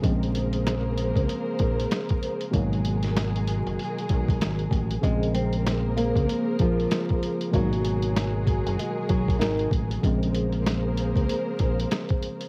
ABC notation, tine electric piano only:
X:1
M:4/4
L:1/8
Q:"Swing 16ths" 1/4=96
K:Bbm
V:1 name="Tine electric piano" clef=bass
[D,F,A,C]8 | [_C,E,G,B,]8 | [D,F,A,C]8 | [_C,E,G,B,]8 |
[D,F,A,C]8 |]